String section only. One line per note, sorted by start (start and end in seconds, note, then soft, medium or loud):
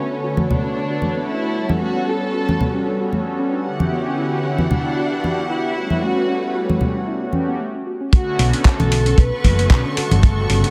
0.00 1.53 B3 medium
0.00 3.62 A4 medium
0.00 3.61 C#5 medium
1.55 3.63 G3 medium
1.55 3.63 F#4 medium
1.55 3.63 B4 medium
3.65 5.74 E3 medium
3.65 5.74 E4 medium
3.65 7.56 F#5 medium
5.75 7.58 A3 medium
5.75 7.58 E4 medium
5.75 7.58 B4 medium
5.75 7.58 C#5 medium
8.13 10.70 A4 medium
8.13 10.70 C#6 medium
9.97 10.70 F#5 medium
9.97 10.70 B5 medium